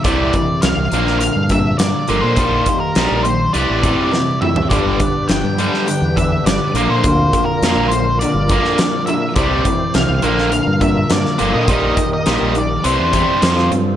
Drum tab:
HH |x-x-x-x-x-x-x-x-|x-x-x-x-x-x-----|x-x-x-x-x-x-x-x-|x-x-x-x-x-x-x-x-|
SD |----o--o----o---|----o-------o---|----o--o----o---|----o------oo---|
T2 |----------------|--------------o-|----------------|----------------|
FT |----------------|---------------o|----------------|----------------|
BD |o-o-------o-----|o-o-------o-----|o-o-------o-----|o-o-------o-----|

HH |x-x-x-x-x-x-x-x-|x-x-x-x-x-x-x-x-|
SD |----o--o----oo--|----o-------oo--|
T2 |----------------|----------------|
FT |----------------|----------------|
BD |o-o-------o-----|o-o-------o-----|